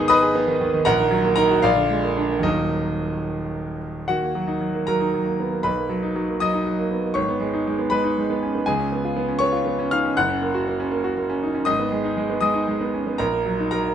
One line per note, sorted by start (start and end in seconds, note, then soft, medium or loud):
0.00 0.84 G#1 medium
0.00 0.47 D#3 medium
0.00 0.90 G#3 medium
0.00 0.35 B3 medium
0.00 0.90 D#4 medium
0.00 0.18 G#4 medium
0.00 0.10 D#5 medium
0.00 0.10 B5 medium
0.00 0.08 D#6 loud
0.08 0.31 B4 medium
0.08 0.34 D#5 medium
0.08 0.34 B5 medium
0.08 0.35 D#6 loud
0.22 0.43 G#4 medium
0.35 0.56 B3 medium
0.47 0.69 D#3 medium
0.61 0.82 D#2 medium
0.74 0.87 D#3 medium
0.85 1.62 A#1 medium
0.85 1.34 A#4 medium
0.85 1.34 F#5 medium
0.85 1.34 A#5 loud
1.00 1.20 D#3 medium
1.11 1.32 F#3 medium
1.25 1.46 A#3 medium
1.36 1.59 D#4 medium
1.36 1.62 A#4 medium
1.36 1.63 A#5 loud
1.51 1.65 F#4 medium
1.62 2.42 A#1 medium
1.62 2.41 F4 medium
1.62 2.41 D5 medium
1.62 2.44 F5 loud
1.76 1.98 D3 medium
1.90 2.12 G#3 medium
2.03 2.26 A#3 medium
2.17 2.39 D4 medium
2.29 2.41 A#3 medium
2.39 4.02 D#2 medium
2.39 4.03 D#3 medium
2.39 4.03 F#3 soft
2.39 4.04 A#3 soft
2.43 4.04 D#1 medium
2.43 3.78 D#4 medium
2.43 3.78 A#4 medium
2.43 3.81 D#5 medium
4.08 5.61 D#2 medium
4.08 4.84 F#4 medium
4.08 4.87 F#5 medium
4.22 4.43 A#3 medium
4.35 4.56 F#3 medium
4.47 4.69 D#4 medium
4.61 4.82 F#3 medium
4.74 4.95 A#3 medium
4.87 5.09 F#3 medium
4.87 5.61 A#4 medium
4.87 5.65 A#5 medium
5.00 5.21 D#4 medium
5.14 5.35 F#3 medium
5.26 5.47 A#3 medium
5.40 5.53 B3 soft
5.51 5.65 A#3 medium
5.63 7.13 B1 medium
5.63 6.37 B4 medium
5.63 6.41 B5 medium
5.77 5.98 A#3 soft
5.89 6.11 F#3 medium
6.03 6.24 D#4 medium
6.16 6.37 F#3 medium
6.28 6.49 A#3 soft
6.40 6.62 F#3 medium
6.40 7.13 D#5 medium
6.40 7.17 D#6 medium
6.53 6.74 D#4 medium
6.66 6.87 F#3 medium
6.79 6.99 A#3 medium
6.91 7.04 B3 soft
7.04 7.17 A#3 medium
7.14 8.62 G#1 medium
7.14 7.87 C#5 medium
7.14 7.90 C#6 medium
7.29 7.49 B3 medium
7.40 7.61 G#3 medium
7.54 7.74 D#4 medium
7.67 7.87 G#3 medium
7.79 7.99 B3 medium
7.90 8.12 G#3 medium
7.90 8.63 B4 medium
7.90 8.66 B5 loud
8.04 8.24 D#4 medium
8.17 8.37 G#3 medium
8.30 8.50 B3 medium
8.43 8.55 C#4 soft
8.55 8.67 B3 medium
8.66 10.13 C#2 medium
8.66 9.38 G#4 medium
8.66 9.41 G#5 medium
8.79 9.00 C#4 medium
8.92 9.12 B3 medium
9.05 9.24 F4 medium
9.17 9.37 B3 medium
9.28 9.49 C#4 medium
9.39 9.61 B3 medium
9.39 9.87 C#5 medium
9.39 9.90 C#6 loud
9.52 9.73 F4 medium
9.65 9.86 B3 medium
9.79 9.99 C#4 medium
9.91 10.04 D#4 medium
9.91 10.15 F5 medium
9.91 10.16 F6 loud
10.05 10.17 C#4 medium
10.17 11.63 F#1 medium
10.17 11.63 F#5 medium
10.17 11.67 F#6 loud
10.29 10.49 C#4 medium
10.42 10.62 A#3 medium
10.54 10.74 F#4 medium
10.67 10.87 A#3 medium
10.80 11.00 C#4 medium
10.91 11.12 A#3 medium
11.04 11.24 F#4 medium
11.17 11.37 A#3 medium
11.30 11.49 C#4 medium
11.43 11.55 D#4 medium
11.54 11.67 C#4 medium
11.65 13.16 G#1 medium
11.65 12.39 D#5 medium
11.65 12.39 D#6 medium
11.79 12.00 B3 medium
11.92 12.12 G#3 medium
12.04 12.25 D#4 medium
12.17 12.38 G#3 medium
12.30 12.51 B3 medium
12.41 12.63 G#3 medium
12.41 12.66 D#5 medium
12.41 12.68 D#6 medium
12.54 12.75 D#4 medium
12.68 12.89 G#3 medium
12.81 13.02 B3 medium
12.94 13.07 C#4 medium
13.07 13.20 B3 medium
13.18 13.95 A#1 medium
13.18 13.69 A#4 medium
13.18 13.69 A#5 medium
13.32 13.54 A#3 medium
13.46 13.68 F#3 medium
13.59 13.81 D#4 medium
13.71 13.95 F#3 medium
13.71 13.95 A#4 medium
13.71 13.95 A#5 medium
13.85 13.95 A#3 medium